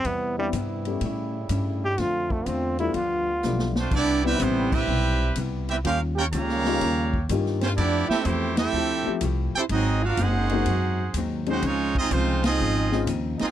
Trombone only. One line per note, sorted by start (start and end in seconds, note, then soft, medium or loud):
0.06 0.38 B3 medium
0.39 0.48 G3 medium
1.85 2.01 G4 loud
2.00 2.34 F4 medium
2.32 2.49 A3 medium
2.48 2.79 C4 medium
2.80 2.97 E4 medium
2.95 3.76 F4 medium